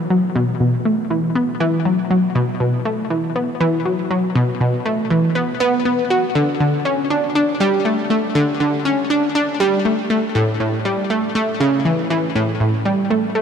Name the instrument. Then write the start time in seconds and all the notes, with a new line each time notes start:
synth arpeggio sound
0.10 F#3
0.35 B2
0.60 B2
0.85 A3
1.10 E3
1.35 B3
1.60 E3
1.85 F#3
2.10 F#3
2.35 B2
2.60 B2
2.85 A3
3.10 E3
3.36 B3
3.60 E3
3.85 F#3
4.10 F#3
4.35 B2
4.61 B2
4.85 A3
5.10 E3
5.35 B3
5.60 B3
5.85 B3
6.10 F#4
6.35 D3
6.60 D3
6.85 C#4
7.10 D4
7.35 D4
7.60 G3
7.85 A3
8.10 A3
8.35 D3
8.60 D3
8.85 C#4
9.10 D4
9.35 D4
9.60 G3
9.85 A3
10.10 A3
10.35 A2
10.60 A2
10.85 G3
11.10 A3
11.35 A3
11.60 C#3
11.85 E3
12.10 E3
12.35 A2
12.60 A2
12.85 G3
13.10 A3
13.35 A3